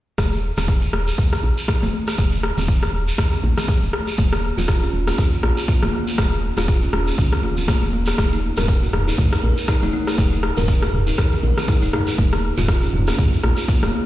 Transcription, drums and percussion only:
0.18 kick, cross-stick, high conga, shekere
0.33 muted conga, shekere
0.57 cross-stick, muted conga, low conga, shekere
0.68 kick, shekere
0.82 muted conga, shekere
0.93 cross-stick
1.07 shekere
1.18 kick, muted conga, high conga, shekere
1.32 cross-stick, shekere
1.43 muted conga, high conga
1.58 shekere
1.68 kick, cross-stick, muted conga, shekere
1.82 high conga, low conga, shekere
1.93 high conga
2.07 cross-stick, muted conga, shekere
2.18 kick, high conga, shekere
2.32 muted conga, shekere
2.43 cross-stick
2.58 muted conga, low conga, shekere
2.68 kick, shekere
2.83 cross-stick, muted conga, shekere
3.08 shekere
3.18 kick, cross-stick, muted conga, shekere
3.33 low conga, shekere
3.43 muted conga, high conga, low conga
3.58 cross-stick, low conga, shekere
3.68 kick, muted conga, high conga, shekere
3.83 shekere
3.93 cross-stick, high conga
4.07 muted conga, shekere
4.18 kick, high conga, shekere
4.33 cross-stick, muted conga, shekere
4.57 muted conga, low conga, shekere
4.68 kick, cross-stick, shekere
4.83 muted conga, shekere
5.08 cross-stick, shekere
5.17 kick, muted conga, high conga, shekere
5.32 shekere
5.43 cross-stick, muted conga, high conga
5.57 shekere
5.68 kick, muted conga, shekere
5.82 cross-stick, high conga, low conga, shekere
5.94 high conga
6.08 muted conga, shekere
6.18 kick, cross-stick, high conga, shekere
6.31 muted conga, shekere
6.57 cross-stick, muted conga, low conga, shekere
6.68 kick, shekere
6.82 muted conga, shekere
6.93 cross-stick
7.08 shekere
7.18 kick, muted conga, shekere
7.32 cross-stick, low conga, shekere
7.42 muted conga, high conga, low conga
7.57 low conga, shekere
7.67 kick, cross-stick, muted conga, high conga, shekere
7.82 shekere
7.93 high conga
8.06 cross-stick, muted conga, shekere
8.18 kick, cross-stick, high conga, shekere
8.32 muted conga, shekere
8.57 cross-stick, mid tom, muted conga, low conga, shekere
8.68 kick, shekere
8.83 muted conga, shekere
8.93 cross-stick, mid tom
9.08 shekere
9.18 kick, mid tom, muted conga, high conga, shekere
9.32 cross-stick, shekere
9.43 muted conga, high conga
9.57 shekere
9.68 kick, cross-stick, muted conga, shekere
9.82 high conga, low conga, shekere
9.93 high conga
10.07 cross-stick, muted conga, shekere
10.18 kick, high conga, shekere
10.32 muted conga, shekere
10.43 cross-stick
10.57 mid tom, muted conga, low conga, shekere
10.68 kick, shekere
10.82 cross-stick, muted conga, shekere
10.93 mid tom
11.07 shekere
11.17 kick, cross-stick, muted conga, shekere
11.32 low conga, shekere
11.43 muted conga, high conga, low conga
11.57 cross-stick, low conga, shekere
11.68 kick, muted conga, high conga, shekere
11.82 shekere
11.93 cross-stick, mid tom, high conga
12.07 muted conga, shekere
12.18 kick, high conga, shekere
12.33 cross-stick, muted conga, shekere
12.57 mid tom, muted conga, low conga, shekere
12.68 kick, cross-stick, shekere
12.82 muted conga, shekere
12.94 mid tom
13.07 cross-stick, shekere
13.18 kick, mid tom, muted conga, high conga, shekere
13.33 shekere
13.43 cross-stick, muted conga, high conga
13.57 shekere
13.68 kick, muted conga, shekere
13.83 cross-stick, high conga, low conga, shekere
13.94 high conga

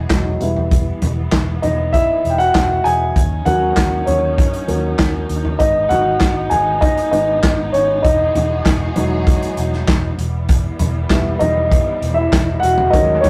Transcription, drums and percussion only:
0.10 kick, snare, clap, closed hi-hat
0.41 closed hi-hat
0.56 floor tom
0.71 kick, closed hi-hat
1.02 closed hi-hat, floor tom
1.32 kick, snare, clap, closed hi-hat
1.63 closed hi-hat, floor tom
1.94 kick, closed hi-hat
2.25 closed hi-hat
2.40 closed hi-hat
2.55 kick, snare, clap, closed hi-hat
2.86 closed hi-hat
3.16 kick, closed hi-hat
3.46 closed hi-hat, floor tom
3.77 kick, snare, clap, closed hi-hat
4.07 closed hi-hat, floor tom
4.38 kick, closed hi-hat
4.54 closed hi-hat
4.68 closed hi-hat
4.99 kick, snare, clap, closed hi-hat
5.29 closed hi-hat
5.45 floor tom
5.60 kick, closed hi-hat
5.90 closed hi-hat, floor tom
6.20 kick, snare, clap, closed hi-hat
6.51 closed hi-hat, floor tom
6.82 kick, closed hi-hat
6.97 closed hi-hat
7.13 closed hi-hat
7.43 kick, snare, clap, closed hi-hat
7.74 closed hi-hat
8.05 kick, closed hi-hat
8.35 closed hi-hat, floor tom
8.65 kick, snare, clap, closed hi-hat
8.96 closed hi-hat, floor tom
9.27 kick, closed hi-hat
9.42 closed hi-hat
9.57 closed hi-hat
9.73 snare
9.88 kick, snare, clap, closed hi-hat
10.19 closed hi-hat
10.49 kick, closed hi-hat
10.79 closed hi-hat, floor tom
11.10 kick, snare, clap, closed hi-hat
11.40 closed hi-hat, floor tom
11.72 kick, closed hi-hat
12.02 closed hi-hat
12.33 kick, snare, clap, closed hi-hat
12.63 closed hi-hat
12.78 floor tom
12.94 kick, closed hi-hat
13.24 closed hi-hat, floor tom

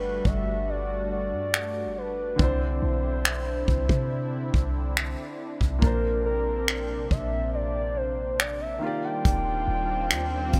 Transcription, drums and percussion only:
0.25 kick
1.54 finger snap
2.39 kick
3.25 finger snap
3.68 kick
3.89 kick
4.54 kick
4.97 finger snap
5.61 kick
5.82 kick
6.68 finger snap
7.11 kick
8.40 finger snap
9.25 kick, closed hi-hat
10.11 finger snap, closed hi-hat
10.53 kick, closed hi-hat

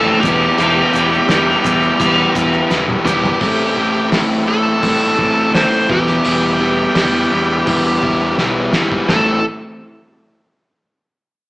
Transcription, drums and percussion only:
0.23 kick, crash, shaker
0.58 crash, shaker
0.93 crash, shaker
1.14 shaker
1.29 snare, crash, shaker
1.64 kick, crash, shaker
1.83 shaker
2.00 kick, crash, shaker
2.35 kick, crash, shaker
2.53 shaker
2.71 snare, shaker
2.88 high tom
3.06 mid tom, shaker
3.23 floor tom, shaker
3.41 kick, open hi-hat
4.12 snare, open hi-hat
4.83 kick, open hi-hat
5.19 kick
5.54 snare, open hi-hat
5.90 kick
6.07 snare
6.25 open hi-hat
6.95 snare, open hi-hat
7.67 kick, open hi-hat
8.03 kick
8.38 snare
8.73 snare
8.92 kick
9.09 snare, floor tom

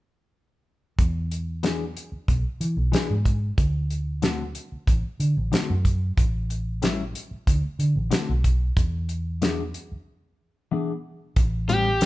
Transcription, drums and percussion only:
0.99 kick, closed hi-hat
1.32 closed hi-hat
1.63 snare, closed hi-hat
1.97 closed hi-hat
2.28 kick, closed hi-hat
2.61 closed hi-hat
2.93 snare, closed hi-hat
3.25 kick, closed hi-hat
3.58 kick, closed hi-hat
3.90 closed hi-hat
4.22 snare, closed hi-hat
4.55 closed hi-hat
4.87 kick, closed hi-hat
5.20 closed hi-hat
5.53 snare, closed hi-hat
5.85 kick, closed hi-hat
6.18 kick, closed hi-hat
6.50 closed hi-hat
6.82 snare, closed hi-hat
7.15 closed hi-hat
7.47 kick, closed hi-hat
7.80 closed hi-hat
8.11 snare, closed hi-hat
8.44 kick, closed hi-hat
8.77 kick, closed hi-hat
9.09 closed hi-hat
9.42 snare, closed hi-hat
9.74 closed hi-hat
11.36 kick, closed hi-hat
11.69 closed hi-hat
12.01 snare, closed hi-hat

